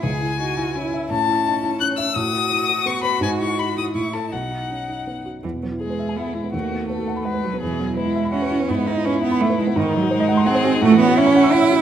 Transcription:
X:1
M:3/4
L:1/16
Q:1/4=168
K:E
V:1 name="Violin"
g8- g2 z2 | a8 f'2 e'2 | d'8 c'2 b2 | g2 c'2 b2 d'2 c'2 a2 |
f8- f2 z2 | z4 G4 E4 | F4 A4 B4 | G4 E4 F4 |
E12 | D8 G4 | F4 E4 C4 |]
V:2 name="Grand piano"
C,,2 E2 D2 E2 C2 e2 | A,,2 E2 D2 E2 C2 e2 | A,,2 F2 E2 F2 B,2 B2 | G,,2 E2 D2 E2 A,,2 [EA]2 |
B,,,2 D2 C2 D2 B,2 F2 | E,, B,, B, E G B e g e G E B, | D,, D, B, F B F f b f B F B, | E,, B,, B, E B E e b e B E B, |
G,, G, B, E B E e b e B E B, | G,, D, D F ^B d f ^b f B F D | A,, E, C F e c f e' f e F2 |]
V:3 name="Cello"
G4 F4 E4 | C12 | F12- | F8 E4 |
D8- D2 z2 | E,2 F,2 G,4 B,2 G,2 | A,8 G,2 F,2 | E,2 F,2 G,4 C4 |
B,2 D2 C2 B,2 A,2 G,2 | D,2 F,2 G,4 ^B,4 | A,2 B,2 C4 E4 |]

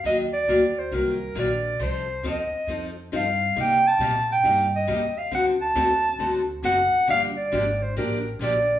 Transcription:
X:1
M:4/4
L:1/8
Q:"Swing" 1/4=136
K:Cdor
V:1 name="Clarinet"
e d2 c B2 d2 | c2 e3 z f2 | g a2 g2 e2 f | ^f a4 z f2 |
f d2 c B2 d2 |]
V:2 name="Steel-string acoustic guitar"
[E,_G,B,F] z [E,G,B,F] z [E,G,B,F] z [E,G,B,F] z | [F,CEA] z [F,CEA] z [F,CEA] z [F,CEA] z | [C,G,B,EG] z [C,G,B,EG] z [C,G,B,EG] z [C,G,B,EG] z | [D,A,C^FA] z [D,A,CFA] z [D,A,CFA] z [D,A,CFA] z |
[D,F,B,DG] z [D,F,B,DG] z [D,F,B,DG] z [D,F,B,DG] z |]
V:3 name="Upright bass" clef=bass
E,,2 D,,2 C,,2 B,,,2 | C,,2 E,, z F,,2 G,,2 | C,2 B,,2 G,,2 E,,2 | D,,2 E,,2 D,,2 ^F,,, z |
G,,,2 _A,,,2 =A,,,2 B,,,2 |]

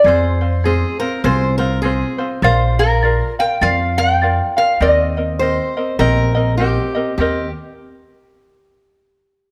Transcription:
X:1
M:4/4
L:1/16
Q:"Swing" 1/4=101
K:Eb
V:1 name="Resonator guitar played with a steel bar"
c6 z8 z2 | c2 B4 g2 f2 g4 f2 | e6 z8 z2 | z16 |]
V:2 name="Steel-string acoustic guitar"
z4 A2 B2 c2 B2 A3 z | z16 | z4 c4 B4 G4 | G2 z12 z2 |]
V:3 name="Ukulele"
[CFAc]2 [CFc]2 [CFAc]2 [CFc]2 [CFAc]2 [CFc]2 [CFAc]2 [CFc]2 | [FBdf]2 [FBf]2 [FBdf]2 [FBf]2 [FBdf]2 [FBf]2 [FBdf]2 [FBf]2 | [CGBe]2 [CBe]2 [CGBe]2 [CBe]2 [CGBe]2 [CBe]2 [CGBe]2 [CBe]2 | [CGBe]2 z12 z2 |]
V:4 name="Upright bass" clef=bass
F,,8 C,,8 | B,,,8 F,,8 | E,,8 B,,,8 | E,,2 z12 z2 |]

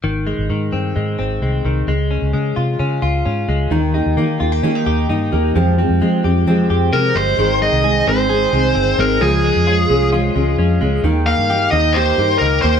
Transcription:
X:1
M:4/4
L:1/16
Q:1/4=131
K:Ab
V:1 name="Lead electric guitar"
z16 | z16 | z16 | z12 B2 c2- |
c2 e4 c8 B2 | A8 z8 | z2 f4 e2 c4 B2 c2 |]
V:2 name="Clean electric guitar"
E,2 A,2 E,2 C2 A,2 C2 A,2 E,2 | A,2 D2 A,2 F2 D2 F2 D2 A,2 | E,2 E2 B,2 F G D E G2 E2 B,2 | F,2 C2 A,2 G2 C2 G2 C2 A,2 |
E,2 A,2 A2 C2 A2 A,2 C2 A,2 | F,2 A,2 F2 D2 F2 A,2 D2 A,2 | E,2 B,2 G2 E2 G2 B,2 E2 B,2 |]
V:3 name="Steel-string acoustic guitar"
z16 | z16 | [E,B,EG]2 [B,EG]2 [E,B,EG]2 [B,EG]2 [E,B,EG]4 [E,B,EG]2 [B,EG]2 | [F,,C,F,A,CG]2 [F,A,CG]2 [F,A,CG]2 [F,A,CG]2 [F,,C,F,A,CG]4 [F,A,CG]4 |
[A,,E,A,CEA]4 [A,CEA]2 [A,CEA]2 [A,CEA]2 [A,CEA]4 [A,CEA]2 | [D,F,A,DA]4 [F,A,DA]2 [A,DA]2 [F,A,DA]2 [A,DA]4 [A,DA]2 | [E,B,EG]4 [E,B,EG]2 [B,EG]2 [E,B,EG]2 [B,EG]4 [B,EG]2 |]
V:4 name="Fingered electric bass" clef=bass
A,,,3 A,,, A,,2 G,,2 A,,2 A,,,2 C,,2 C,,2 | D,,3 D,, D,2 C,2 D,2 D,,2 A,,2 D,,2 | E,,3 E,, E,2 E,,2 E,2 E,,2 G,,2 E,,2 | F,,3 F,, F,2 F,,2 F,2 F,,2 C,2 G,,,2 |
A,,,3 C,,3 A,,,4 C,,2 G,,,2 A,,,2 | D,,3 F,,3 C,,4 D,,2 F,,2 D,,2 | E,,3 G,,3 E,,4 G,,2 D,,2 E,,2 |]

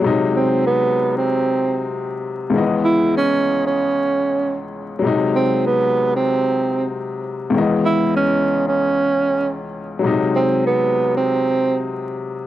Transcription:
X:1
M:4/4
L:1/16
Q:"Swing 16ths" 1/4=96
K:C#m
V:1 name="Tenor saxophone"
z2 ^B,2 =B,3 ^B,4- B, z4 | z2 E2 C3 C6 z3 | z2 ^B,2 =B,3 ^B,4- B, z4 | z2 E2 C3 C6 z3 |
z2 ^B,2 =B,3 ^B,4- B, z4 |]
V:2 name="Upright piano" clef=bass
[^B,,F,G,D]16 | [C,,D,E,G,B,d]16 | [^B,,F,G,D]16 | [C,,D,E,G,B,d]16 |
[^B,,F,G,D]16 |]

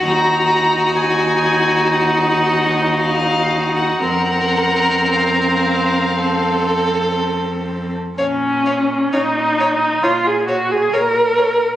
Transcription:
X:1
M:4/4
L:1/16
Q:1/4=61
K:Bbm
V:1 name="Violin"
b4 a4 g4 f3 g | g4 f8 z4 | f2 f2 f2 f2 f2 f2 f2 f2 |]
V:2 name="Violin"
G16 | B8 =A8 | d2 d2 d2 d2 d2 d2 d2 d2 |]
V:3 name="Viola"
E16 | C16 | D4 E4 F A G A B4 |]
V:4 name="Cello" clef=bass
E,,16 | F,,16 | B,,4 B,,4 B,,4 B,,4 |]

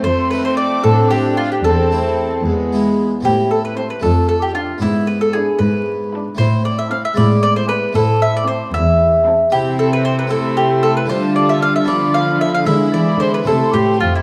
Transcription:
X:1
M:6/8
L:1/16
Q:3/8=76
K:Am
V:1 name="Violin section"
c'2 b c' d'2 a2 g2 f g | a6 z6 | z4 a2 z4 a2 | z4 b2 z4 b2 |
z4 a2 z4 ^g2 | z4 a2 z4 a2 | g6 c'6 | a6 b6 |
b6 c'6 |]
V:2 name="Mandolin"
c2 B c d2 A2 G2 F G | A6 z6 | G2 A B c B A2 A G F2 | E2 B A ^G2 B6 |
c2 d e f e d2 d c B2 | A2 e d c2 e6 | G2 A B c B A2 G2 A B | c2 d e f e d2 f2 e f |
e2 d2 c B A2 G2 F E |]
V:3 name="Violin section"
C12 | C6 B,4 z2 | z4 E2 z4 F2 | z4 E2 z4 E2 |
z4 E2 z4 E2 | z4 E2 z4 E2 | E6 E6 | F6 F6 |
E6 E6 |]
V:4 name="Viola section"
A,6 D6 | C6 ^G,4 z2 | z4 C2 z4 D2 | z4 D2 z4 D2 |
z4 C2 z4 B,2 | z4 C2 z4 C2 | C6 A,6 | G,6 F,6 |
^G,6 A,6 |]
V:5 name="Harpsichord"
z2 [A,C_E]6 [A,CE]4 | z2 [A,CE]4 z2 [^G,B,E]4 | [A,CE]6 [A,DF]6 | [B,DE]12 |
[A,CE]6 [^G,B,E]6 | [A,CE]12 | [CE]6 [CE]6 | [A,DF]6 [B,DF]6 |
[^G,B,E]6 [A,CE]6 |]
V:6 name="Harpsichord" clef=bass
F,,6 A,,6 | E,,6 E,,6 | A,,6 F,,6 | ^G,,6 G,,6 |
A,,6 A,,6 | A,,6 E,,6 | C,12 | D,12 |
D,2 E,2 D,2 C,2 A,,2 F,,2 |]
V:7 name="Cello section" clef=bass
F,,6 A,,6 | E,,6 E,,6 | A,,6 F,,6 | ^G,,6 G,,6 |
A,,6 A,,6 | A,,6 E,,6 | C,12 | D,12 |
D,2 E,2 D,2 C,2 A,,2 F,,2 |]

